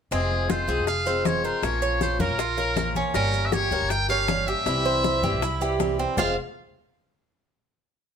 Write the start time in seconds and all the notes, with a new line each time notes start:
0.11 F1 C3 F3 G#3 C4 F4 G#4, high bongo, high conga, maracas
0.31 high conga
0.50 F4 C5, high bongo, high conga, maracas
0.68 C2 F3 G#3 C4 F4 G#4, high bongo, high conga, maracas
0.77 F1
0.87 F5, muted steel-string acoustic guitar stroke, high bongo, high conga, maracas
1.06 F3 G#3 C4 F4 C5, high bongo, high conga, maracas
1.25 F3 G#3 C4 F4 C#5, high bongo, low bongo, high conga, maracas
1.44 A#4 C5, high bongo, high conga, maracas
1.62 A#1 F3 A#3 C#4 F4 C#5, high bongo, high conga, maracas
1.82 C#5, high bongo, high conga, maracas
2.01 C5, high bongo, high conga, maracas
2.19 F2 A#3 C#4 F4 A#4, high conga, maracas
2.29 A#1
2.39 F4, muted steel-string acoustic guitar stroke, high bongo, high conga, maracas
2.57 A#3 C#4 F4 A#4, high bongo, high conga
2.76 F3 A#3 C#4 F4, high bongo, low bongo, high conga, maracas
2.95 C#4, high bongo, high conga, maracas
3.14 G1 G3 A#3 C#4 G4 A#4, high bongo, high conga, maracas
3.33 high conga, maracas
3.46 E5
3.52 G4 C#5, high bongo, high conga, maracas
3.71 C#2 A#3 C#4 G4 A#4, high bongo, high conga, maracas
3.80 G1
3.90 G5, muted steel-string acoustic guitar stroke, high bongo, high conga, maracas
4.09 A#3 C#4 G4 C#5 F5, high bongo, high conga
4.28 G3 A#3 C#4 G4, high bongo, low bongo, high conga, maracas
4.47 G4 E5, high bongo, high conga, maracas
4.66 C2 C3 E3 G3 C4 E4, high bongo, high conga, maracas
4.85 C5, high bongo, high conga
5.04 high bongo, high conga, maracas
5.22 G2 E3 G3 C4 E4 G4, high conga, maracas
5.32 C2
5.42 E4, muted steel-string acoustic guitar stroke, high bongo, high conga, maracas
5.61 E3 G3 C4 E4 G4, high bongo, high conga, maracas
5.80 E3 G3 C4 E4, high bongo, low bongo, high conga, maracas
5.99 C4, high bongo, maracas
6.17 F1 F2 C3 F3 G#3 C4 F4 C5 F5, low bongo, low conga, maracas